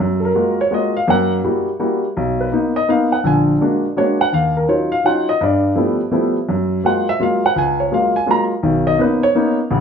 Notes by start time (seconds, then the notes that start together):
0.00 F#2
0.20 A4
0.25 A#4
0.35 G#3 A#3 F4 F#4
0.61 C#5
0.71 G#3 A#3 F4 F#4 D#5
0.97 F5
1.08 F#2 A#3 F#5
1.44 G3 A#3 E4 F#4
1.79 G3 A#3 E4 F#4
2.17 B1
2.41 B4
2.52 A#3 B3 D#4
2.76 D#5
2.88 A#3 B3 D#4 F5
3.12 F#5
3.24 A#1 D3 G#5
3.61 G#3 A#3 D4 F#4
3.97 G#3 A#3 D4 F#4 C#5
4.21 F#5
4.33 D#2 F5
4.57 A#4
4.68 F#3 C#4 D#4 F4 C#5
4.92 F5
5.04 F#3 C#4 D#4 F4 F#5
5.29 D#5
5.41 G2 D5
5.75 F3 G3 A3 B3 E4
6.12 F3 G3 A3 B3 E4
6.49 F#2
6.84 F#3 G#3 A#3 F4 F#5
7.09 E5
7.20 F#3 G#3 A#3 F4 F5
7.46 F#5
7.56 C#2 G#5
7.80 C#5
7.91 F#3 G#3 A#3 F4 F5
8.16 G#5
8.26 F#3 G#3 A#3 F4
8.31 A#5
8.63 B1 D#3
8.87 D#5
8.99 A#3 B3 C#4 D#4 B4
9.23 C#5
9.35 A#3 B3 C#4 D#4
9.71 A1 C#3